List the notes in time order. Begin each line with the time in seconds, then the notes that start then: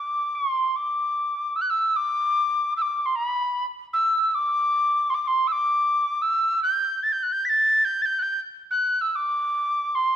Already playing: D6
0.35 C6
0.76 D6
1.56 E6
1.62 F#6
1.70 E6
1.96 D6
2.77 E6
2.82 D6
3.06 C6
3.16 B5
3.93 E6
4.23 E6
4.31 D6 E6
5.10 C6
5.14 D6
5.23 D6
5.27 C6
5.47 E6
5.52 D6
6.22 E6
6.63 G6
7.03 A6
7.12 G6
7.23 F#6
7.32 G6
7.45 B6
7.49 A6
7.85 G6
8.02 G6 A6
8.19 F#6 G6
8.71 F#6
9.01 E6
9.12 D6 E6
9.95 C6